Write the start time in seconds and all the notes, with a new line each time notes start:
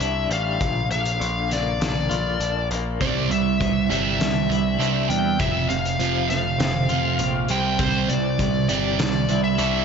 Already playing: E3 G3 E4 E5
0.00 C2 D4, closed hi-hat
0.30 A1 G3 F5, closed hi-hat
0.61 A#1 A#2, kick, closed hi-hat
0.89 A#1 D3 F5, closed hi-hat
1.05 closed hi-hat
1.19 A#1 D3, closed hi-hat
1.50 A#3 D5, snare, closed hi-hat
1.80 A#1 D4, snare, closed hi-hat
2.09 A#1 F4, closed hi-hat
2.40 A#1 D4, closed hi-hat
2.70 A#1 A#3, closed hi-hat
3.00 C2 C3 G3 C4 D5, kick, closed hi-hat
3.30 C2 C3 E3 G3 E5, closed hi-hat
3.60 C2 C3 E3 G3, kick, closed hi-hat
3.89 G1 C3 G3 C4 E5, closed hi-hat
4.20 C2 C3 G3 D4, snare, closed hi-hat
4.49 C2 C3 G3 E4, closed hi-hat
4.79 C2 C3 G3 C4 D4, closed hi-hat
5.09 E2 C3 G3 G5, closed hi-hat
5.38 F1 F2 C3 F3 E5, kick, closed hi-hat
5.69 F1 F2 C3 F5, closed hi-hat
5.85 closed hi-hat
5.99 F1 F2 C3 F3, closed hi-hat
6.30 F2 C3 A3 F5, snare, closed hi-hat
6.58 F1 F2 C3 C4, snare, closed hi-hat
6.89 F1 F2 C3 F3 F4, closed hi-hat
7.19 A#1 F2 C3 C4, closed hi-hat
7.48 C2 C3 G3 C4 G5, closed hi-hat
7.79 C2 C3 G3 C4 C5, kick, closed hi-hat
8.08 C2 C3 E3 G3 D5, closed hi-hat
8.39 C2 C3 E3 G3, kick, closed hi-hat
8.69 G1 C3 G3 C4 D5, closed hi-hat
8.99 C2 C3 G3 D4, snare, closed hi-hat
9.28 C2 C3 G3 E4, closed hi-hat
9.44 E5
9.58 C2 C3 G3 C4 D4, closed hi-hat